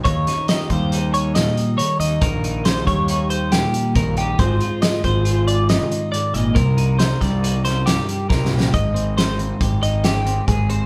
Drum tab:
HH |x--x--x--x--x--x--x--x--x--x--|x--x--x--x--x--x--x--x--x--x--|x--x--x--x--x--x--x--x--x--x--|x--x--x--x--x--x--x--x--------|
SD |---o--o-----------o-----------|------o-----------o-----------|------o-----------o-----------|------o--o-----o--o-----o-o-o-|
BD |o--------o--------------------|o--------o--------------o-----|o--------o--------------------|o--------o--------------o-----|

HH |x--x--x--x--x--x--x--x--x--x--|
SD |------o-----------o-----------|
BD |o-----------o-----------o-----|